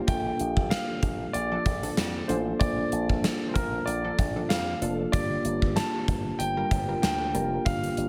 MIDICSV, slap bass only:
0, 0, Header, 1, 2, 480
1, 0, Start_track
1, 0, Tempo, 631579
1, 62, Time_signature, 4, 2, 24, 8
1, 6147, End_track
2, 0, Start_track
2, 0, Title_t, "Slap bass"
2, 0, Program_c, 0, 36
2, 61, Note_on_c, 0, 34, 89
2, 234, Note_off_c, 0, 34, 0
2, 306, Note_on_c, 0, 34, 83
2, 572, Note_off_c, 0, 34, 0
2, 782, Note_on_c, 0, 34, 95
2, 955, Note_off_c, 0, 34, 0
2, 1021, Note_on_c, 0, 34, 92
2, 1194, Note_off_c, 0, 34, 0
2, 1261, Note_on_c, 0, 34, 85
2, 1434, Note_off_c, 0, 34, 0
2, 1503, Note_on_c, 0, 41, 82
2, 1676, Note_off_c, 0, 41, 0
2, 1741, Note_on_c, 0, 33, 88
2, 1914, Note_off_c, 0, 33, 0
2, 1980, Note_on_c, 0, 34, 104
2, 2154, Note_off_c, 0, 34, 0
2, 2220, Note_on_c, 0, 34, 87
2, 2489, Note_off_c, 0, 34, 0
2, 2702, Note_on_c, 0, 34, 82
2, 2875, Note_off_c, 0, 34, 0
2, 2941, Note_on_c, 0, 34, 90
2, 3114, Note_off_c, 0, 34, 0
2, 3181, Note_on_c, 0, 34, 82
2, 3354, Note_off_c, 0, 34, 0
2, 3420, Note_on_c, 0, 41, 82
2, 3594, Note_off_c, 0, 41, 0
2, 3658, Note_on_c, 0, 29, 82
2, 3833, Note_off_c, 0, 29, 0
2, 3902, Note_on_c, 0, 31, 103
2, 4075, Note_off_c, 0, 31, 0
2, 4141, Note_on_c, 0, 31, 88
2, 4409, Note_off_c, 0, 31, 0
2, 4622, Note_on_c, 0, 31, 91
2, 4795, Note_off_c, 0, 31, 0
2, 4861, Note_on_c, 0, 31, 99
2, 5035, Note_off_c, 0, 31, 0
2, 5102, Note_on_c, 0, 31, 85
2, 5275, Note_off_c, 0, 31, 0
2, 5342, Note_on_c, 0, 38, 75
2, 5582, Note_on_c, 0, 29, 72
2, 5594, Note_off_c, 0, 38, 0
2, 5755, Note_off_c, 0, 29, 0
2, 5822, Note_on_c, 0, 31, 87
2, 5995, Note_off_c, 0, 31, 0
2, 6060, Note_on_c, 0, 31, 83
2, 6147, Note_off_c, 0, 31, 0
2, 6147, End_track
0, 0, End_of_file